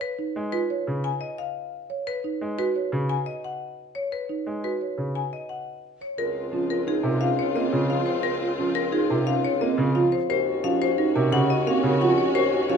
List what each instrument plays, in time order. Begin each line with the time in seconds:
0.01 marimba B4
0.19 marimba D#4
0.36 grand piano G#3
0.52 marimba F4 B4
0.70 marimba C#5
0.87 grand piano C#3
1.04 marimba G#5
1.21 marimba D#5
1.38 marimba F5
1.90 marimba C#5
2.07 marimba B4
2.24 marimba D#4
2.41 grand piano G#3
2.59 marimba F#4 B4
2.76 marimba C#5
2.92 grand piano C#3
3.09 marimba G#5
3.26 marimba D#5
3.44 marimba F#5
3.95 marimba C#5
4.12 marimba B4
4.29 marimba D#4
4.47 grand piano G#3
4.64 marimba F#4 B4
4.81 marimba C#5
4.98 grand piano C#3
5.15 marimba G#5
5.33 marimba D#5
5.49 marimba F#5
6.01 marimba C#5
6.18 bassoon C#2, string section C4 F4, alto flute F4, marimba A#4
6.36 alto flute F4
6.52 grand piano F3, marimba C#4, alto flute F4
6.69 alto flute F4, marimba A#4
6.86 marimba D#4 G#4, alto flute F4
7.03 grand piano C3, alto flute F4, marimba A#4
7.21 marimba C#4 F5, alto flute F4
7.37 alto flute F4, marimba C#5
7.55 grand piano A#3, marimba C4 D#5, alto flute F4
7.72 grand piano C#3, alto flute F4
7.89 grand piano F3, alto flute F4, marimba F4 F5
8.06 alto flute F4, marimba C5
8.23 alto flute F4, marimba A#4
8.41 alto flute F4
8.58 grand piano F3, marimba C#4, alto flute F4
8.75 alto flute F4, marimba A#4
8.92 marimba D#4 G#4, alto flute F4
9.10 grand piano C3, alto flute F4, marimba A#4
9.26 marimba C#4 F5, alto flute F4
9.43 alto flute F4, marimba C#5
9.60 grand piano A#3, marimba C4 D#5, alto flute F4
9.78 grand piano C#3, alto flute F4
9.95 grand piano F3, alto flute F4, marimba F4 F5
10.12 marimba C5
10.29 bassoon D#2, string section C#4 F#4, alto flute F#4, marimba A#4 C5
10.46 alto flute F#4
10.64 grand piano F3, marimba C#4 F5, alto flute F#4
10.80 alto flute F#4, marimba C5
10.98 marimba D#4 A#4, alto flute F#4
11.15 grand piano C3, alto flute F#4, marimba A#4
11.32 grand piano C#3, marimba C#4 F#5, alto flute F#4
11.49 alto flute F#4, marimba D#5
11.66 grand piano A#3, marimba C4 F5, alto flute F#4
11.83 grand piano C#3, alto flute F#4, marimba A#4
12.01 grand piano F3, marimba F4 F#5, alto flute F#4
12.18 alto flute F#4, marimba C#5
12.34 alto flute F#4, marimba A#4 C5
12.52 alto flute F#4
12.69 grand piano F3, marimba C#4 F5, alto flute F#4